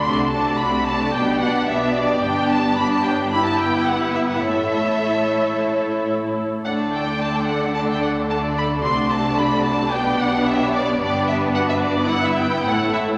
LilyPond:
<<
  \new Staff \with { instrumentName = "Violin section" } { \time 4/4 \key d \major \tempo 4 = 110 c'''8 a''8 b''8 a''8 g''8 fis''8 e''8 d''8 | g''8 a''8 b''16 a''16 g''8 b''16 a''16 g''8 fis''8 e''16 fis''16 | e''2. r4 | fis''8 g''8 a''16 g''16 fis''8 a''16 g''16 fis''8 a''8 b''8 |
c'''8 a''8 b''8 a''8 g''8 fis''8 e''8 d''8 | d''8 e''8 fis''16 e''16 d''8 fis''16 e''16 g''8 fis''8 e''8 | }
  \new Staff \with { instrumentName = "Violin section" } { \time 4/4 \key d \major << { d''8 d''8 d''8 d''8 d''8 d''8 d''8 d''8 | d''4 d''8 cis''8 b'2 | cis''2.~ cis''8 r8 | d''4 d''4 d''4 d''4 |
d''2 d''4 cis''4 | b'2 b'4 cis''4 | } \\ { fis'8 fis'8 fis'8 fis'8 g'8 g'8 g'8 g'8 | g'4 g'4 g'2 | a'2.~ a'8 r8 | a'4 a'4 a'4 a'4 |
fis'2 g'2 | g'4 fis'4 e'4 a'4 | } >> }
  \new Staff \with { instrumentName = "Viola section" } { \time 4/4 \key d \major <a d'>8 <a d'>8 <a d'>8 <a d'>8 <b d'>8 <b d'>8 <b d'>8 <b d'>8 | <b d'>4 <b d'>4 <b e'>2 | <a e'>2.~ <a e'>8 r8 | <a d'>4 <a d'>4 <a d'>4 <a d'>4 |
<a d'>2 <b d'>2 | <b d'>2 <b e'>4 <a e'>4 | }
  \new Staff \with { instrumentName = "Cello section" } { \clef bass \time 4/4 \key d \major c4 c4 b,4 b,4 | g,1 | a,2.~ a,8 r8 | d1 |
c2 b,2 | g,2. a,4 | }
  \new Staff \with { instrumentName = "Double bass section" } { \clef bass \time 4/4 \key d \major c,4 c,4 b,,4 b,,4 | g,,1 | a,,2.~ a,,8 r8 | d,1 |
c,2 b,,2 | g,,2. a,,4 | }
>>